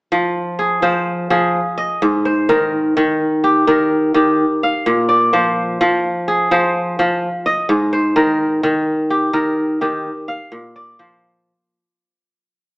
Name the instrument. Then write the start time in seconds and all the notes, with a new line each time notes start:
kora
0.12 F3
0.59 G#4
0.82 F3 C5
1.30 F3 G#4
1.78 D#5
2.02 G#2
2.25 C5
2.49 D#3 A#4
2.97 D#3
3.44 G4
3.67 D#3 A#4
4.14 D#3 G4
4.63 F5
4.86 A#2
5.09 D5
5.33 F3 C5
5.81 F3
6.28 G#4
6.51 F3 C5
6.99 F3
7.46 D#5
7.69 G#2
7.93 C5
8.16 D#3 A#4
8.63 D#3
9.10 G4
9.33 D#3 A#4
9.81 D#3 G4
10.28 F5
10.52 A#2
10.76 D5
10.99 F3 C5